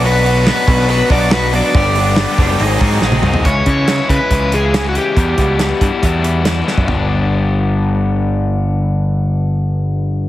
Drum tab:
HH |o-o-o-o-o-o-o-o-|o-o-o-o-o-o-----|x-x-x-x-x-x-x-x-|x-x-x-x-x-x-x---|
SD |----o-------o---|----o-------o---|----o-------o---|----o-------o-o-|
T1 |----------------|-------------o--|----------------|----------------|
T2 |----------------|--------------o-|----------------|----------------|
FT |----------------|---------------o|----------------|----------------|
BD |------o---o-----|o-----o---o-----|o-o---o-o-------|o-o---o-o------o|

HH |----------------|----------------|
SD |----------------|----------------|
T1 |----------------|----------------|
T2 |----------------|----------------|
FT |o---------------|----------------|
BD |o---------------|----------------|